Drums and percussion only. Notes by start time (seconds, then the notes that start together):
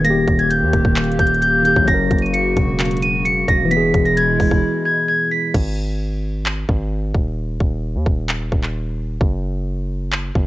0.05 closed hi-hat
0.28 kick, closed hi-hat
0.39 closed hi-hat
0.51 closed hi-hat
0.73 kick, closed hi-hat
0.85 kick
0.96 clap, closed hi-hat
1.04 closed hi-hat
1.12 closed hi-hat
1.19 kick, closed hi-hat
1.27 closed hi-hat
1.34 closed hi-hat
1.42 closed hi-hat
1.65 closed hi-hat
1.76 kick
1.88 kick, closed hi-hat
2.11 kick, closed hi-hat
2.18 closed hi-hat
2.26 closed hi-hat
2.34 closed hi-hat
2.56 kick, closed hi-hat
2.79 clap, closed hi-hat
2.85 closed hi-hat
2.91 closed hi-hat
2.97 closed hi-hat
3.02 closed hi-hat
3.25 closed hi-hat
3.48 kick, closed hi-hat
3.71 closed hi-hat
3.94 kick, closed hi-hat
4.05 closed hi-hat
4.17 closed hi-hat
4.40 kick, open hi-hat
4.51 kick
5.54 kick, crash
6.46 clap
6.69 kick
7.15 kick
7.60 kick
8.06 kick
8.29 clap
8.52 kick
8.63 clap
9.21 kick
10.12 clap
10.35 kick